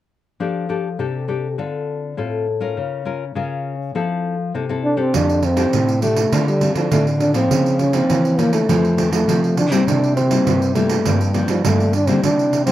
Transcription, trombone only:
4.85 5.01 D4 medium
5.00 5.17 C4 medium
5.16 5.46 D4 medium
5.45 6.02 C4 medium
6.03 6.44 A3 medium
6.48 6.75 G3 medium
6.75 6.90 F3 medium
6.92 7.05 A3 medium
7.20 7.34 D4 medium
7.35 7.81 C4 medium
7.80 7.96 C#4 medium
7.94 8.41 C4 medium
8.39 8.53 A#3 medium
8.54 9.09 A3 medium
9.13 9.54 A3 medium
9.58 9.73 D4 medium
9.72 9.89 C4 medium
9.88 10.16 D4 medium
10.16 10.72 C4 medium
10.75 11.17 A3 medium
11.48 11.63 F3 medium
11.65 11.95 A3 medium
11.94 12.10 D4 medium
12.08 12.23 C4 medium
12.24 12.65 D4 medium
12.66 12.72 C4 medium

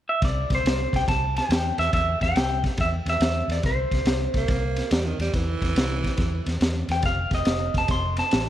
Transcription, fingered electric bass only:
0.22 0.43 C2 medium
0.50 0.61 C2 medium
0.64 0.85 C2 medium
0.93 1.04 C2 medium
1.07 1.39 C2 medium
1.49 1.70 E2 medium
1.78 1.89 E2 medium
1.93 2.14 E2 medium
2.21 2.32 E2 medium
2.35 2.67 C2 medium
2.78 2.99 E2 medium
3.06 3.17 E2 medium
3.20 3.41 E2 medium
3.48 3.59 E2 medium
3.63 3.84 C2 medium
3.92 4.02 C2 medium
4.05 4.26 C2 medium
4.34 4.45 C2 medium
4.49 4.80 C2 medium
4.91 5.12 E2 medium
5.19 5.30 E2 medium
5.33 5.54 E2 medium
5.61 5.72 E2 medium
5.76 6.07 C2 medium
6.18 6.39 E2 medium
6.46 6.57 E2 medium
6.61 6.82 E2 medium
6.88 6.99 E2 medium
7.03 7.24 F1 medium
7.31 7.42 F1 medium
7.47 7.67 F1 medium
7.74 7.85 F1 medium
7.89 8.20 F1 medium
8.33 8.49 A1 medium

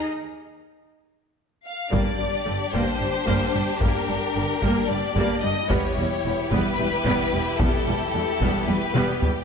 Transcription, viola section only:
1.91 2.17 G3 soft
1.91 2.18 A#3 medium
2.18 2.26 G3 soft
2.46 2.54 D3 soft
2.46 2.54 G3 soft
2.73 2.99 G3 soft
2.73 2.99 A#3 soft
3.01 3.09 G3 soft
3.27 3.53 G3 medium
3.27 3.52 A#3 medium
3.54 3.63 G3 soft
3.81 4.07 G3 medium
3.81 4.07 A#3 medium
4.10 4.18 G3 soft
4.36 4.44 D3 soft
4.36 4.44 G3 soft
4.63 4.87 G3 medium
4.63 4.88 A#3 medium
4.89 4.97 G3 soft
5.17 5.42 G3 medium
5.17 5.42 A#3 medium
5.43 5.51 G3 soft
5.70 5.96 G3 medium
5.70 5.96 B3 medium
5.98 6.06 G3 soft
6.25 6.33 E3 soft
6.25 6.33 G3 soft
6.52 6.77 G3 medium
6.52 6.77 B3 medium
6.79 6.87 G3 soft
7.06 7.31 G3 medium
7.06 7.31 B3 medium
7.33 7.42 G3 soft
7.60 7.85 G3 soft
7.60 7.85 B3 medium
7.87 7.95 G3 soft
8.15 8.23 E3 soft
8.15 8.23 G3 soft
8.42 8.67 G3 medium
8.42 8.67 B3 medium
8.69 8.78 G3 soft
8.96 9.21 G3 medium
8.96 9.21 B3 medium
9.23 9.31 G3 soft

